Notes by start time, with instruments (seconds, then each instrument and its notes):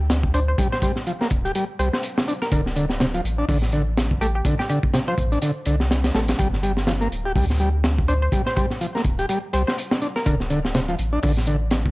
Already playing: sub bass D2
0.10 snare, closed hi-hat
0.23 kick
0.34 transistor combo organ D4, synth pluck C5, closed hi-hat
0.48 synth pluck C5
0.58 transistor combo organ G3, kick, closed hi-hat
0.72 synth pluck C5, snare
0.82 transistor combo organ G3, synth pluck C5, kick, closed hi-hat
0.96 snare
1.07 transistor combo organ F3, closed hi-hat
1.21 transistor combo organ A#3, snare
1.30 sub bass D1, kick, closed hi-hat
1.45 transistor combo organ G4, closed hi-hat
1.55 transistor combo organ G3, closed hi-hat
1.79 sub bass C2, transistor combo organ G3, synth pluck C5, closed hi-hat
1.93 synth pluck C5, snare
2.03 closed hi-hat
2.18 snare
2.28 transistor combo organ D4, closed hi-hat
2.42 synth pluck A#4, snare
2.52 sub bass D1, transistor combo organ D3, synth pluck A#4, kick, closed hi-hat
2.66 snare
2.76 transistor combo organ D3, closed hi-hat
2.90 snare
3.00 transistor combo organ C3, snare, closed hi-hat
3.14 transistor combo organ F3, closed hi-hat
3.24 sub bass A1, closed hi-hat
3.38 transistor combo organ D4
3.49 sub bass A1, transistor combo organ D3, kick, open hi-hat
3.62 snare
3.72 transistor combo organ D3, closed hi-hat
3.97 snare, closed hi-hat
4.11 kick
4.21 transistor combo organ A3, synth pluck G4, closed hi-hat
4.35 synth pluck G4
4.45 transistor combo organ D3, kick, closed hi-hat
4.59 synth pluck G4, snare
4.69 transistor combo organ D3, synth pluck G4, closed hi-hat
4.83 kick
4.94 transistor combo organ C3, snare, closed hi-hat
5.08 transistor combo organ F3, synth pluck C5
5.18 sub bass A1, kick, closed hi-hat
5.32 transistor combo organ D4, closed hi-hat
5.42 transistor combo organ D3, closed hi-hat
5.65 sub bass C2, transistor combo organ D3, closed hi-hat
5.80 snare
5.91 snare, closed hi-hat
6.04 snare, closed hi-hat
6.15 sub bass A1, transistor combo organ A3, snare, closed hi-hat
6.28 snare, closed hi-hat
6.39 sub bass G1, transistor combo organ G3, kick, closed hi-hat
6.53 snare
6.63 transistor combo organ G3, closed hi-hat
6.77 snare
6.87 transistor combo organ F3, snare, closed hi-hat
7.01 transistor combo organ A#3, closed hi-hat
7.11 sub bass D1, closed hi-hat
7.25 transistor combo organ G4
7.36 sub bass D2, transistor combo organ G3, kick, open hi-hat
7.50 snare
7.60 transistor combo organ G3, closed hi-hat
7.84 snare, closed hi-hat
7.98 kick
8.08 transistor combo organ D4, synth pluck C5, closed hi-hat
8.22 synth pluck C5
8.32 transistor combo organ G3, kick, closed hi-hat
8.46 synth pluck C5, snare
8.56 transistor combo organ G3, synth pluck C5, kick, closed hi-hat
8.70 snare
8.81 transistor combo organ F3, closed hi-hat
8.95 transistor combo organ A#3, snare
9.04 sub bass D1, kick, closed hi-hat
9.19 transistor combo organ G4, closed hi-hat
9.29 transistor combo organ G3, closed hi-hat
9.53 sub bass C2, transistor combo organ G3, synth pluck C5, closed hi-hat
9.67 synth pluck C5, snare
9.78 closed hi-hat
9.91 snare
10.02 transistor combo organ D4, closed hi-hat
10.16 synth pluck A#4, snare
10.26 sub bass D1, transistor combo organ D3, synth pluck A#4, kick, closed hi-hat
10.40 snare
10.50 transistor combo organ D3, closed hi-hat
10.65 snare
10.74 transistor combo organ C3, snare, closed hi-hat
10.88 transistor combo organ F3, closed hi-hat
10.99 sub bass A1, closed hi-hat
11.13 transistor combo organ D4
11.23 sub bass A1, transistor combo organ D3, kick, open hi-hat
11.37 snare
11.47 transistor combo organ D3, closed hi-hat
11.71 snare, closed hi-hat
11.86 kick